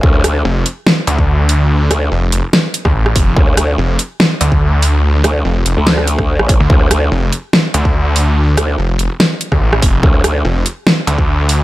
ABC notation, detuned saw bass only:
X:1
M:4/4
L:1/16
Q:"Swing 16ths" 1/4=144
K:Dm
V:1 name="Detuned saw bass" clef=bass
z4 F,,,2 z4 D,,6- | D,,2 z2 F,,,2 F,,, z4 D,, A,,,2 F,,,2 | z4 F,,,2 z4 D,,6- | D,,2 z2 F,,,2 F,,, z8 D,, |
z4 F,,,2 z4 D,,6- | D,,2 z2 F,,,2 F,,, z4 D,, A,,,2 F,,,2 | z4 F,,,2 z4 D,,6 |]